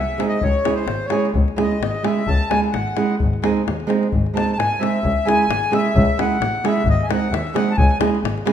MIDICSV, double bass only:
0, 0, Header, 1, 2, 480
1, 0, Start_track
1, 0, Key_signature, 4, "minor"
1, 0, Tempo, 458365
1, 452, Time_signature, 2, 2, 24, 8
1, 8929, End_track
2, 0, Start_track
2, 0, Title_t, "Double bass"
2, 0, Program_c, 0, 43
2, 442, Note_on_c, 0, 37, 101
2, 526, Note_off_c, 0, 37, 0
2, 916, Note_on_c, 0, 32, 70
2, 1000, Note_off_c, 0, 32, 0
2, 1407, Note_on_c, 0, 37, 102
2, 1491, Note_off_c, 0, 37, 0
2, 1899, Note_on_c, 0, 32, 77
2, 1983, Note_off_c, 0, 32, 0
2, 2379, Note_on_c, 0, 37, 102
2, 2463, Note_off_c, 0, 37, 0
2, 2875, Note_on_c, 0, 32, 76
2, 2959, Note_off_c, 0, 32, 0
2, 3360, Note_on_c, 0, 32, 101
2, 3444, Note_off_c, 0, 32, 0
2, 3843, Note_on_c, 0, 39, 81
2, 3927, Note_off_c, 0, 39, 0
2, 4327, Note_on_c, 0, 32, 104
2, 4411, Note_off_c, 0, 32, 0
2, 4790, Note_on_c, 0, 44, 83
2, 4874, Note_off_c, 0, 44, 0
2, 5276, Note_on_c, 0, 37, 101
2, 5360, Note_off_c, 0, 37, 0
2, 5745, Note_on_c, 0, 32, 71
2, 5828, Note_off_c, 0, 32, 0
2, 6236, Note_on_c, 0, 37, 121
2, 6319, Note_off_c, 0, 37, 0
2, 6699, Note_on_c, 0, 33, 76
2, 6783, Note_off_c, 0, 33, 0
2, 7172, Note_on_c, 0, 32, 113
2, 7256, Note_off_c, 0, 32, 0
2, 7655, Note_on_c, 0, 39, 86
2, 7738, Note_off_c, 0, 39, 0
2, 8152, Note_on_c, 0, 37, 112
2, 8236, Note_off_c, 0, 37, 0
2, 8623, Note_on_c, 0, 32, 85
2, 8707, Note_off_c, 0, 32, 0
2, 8929, End_track
0, 0, End_of_file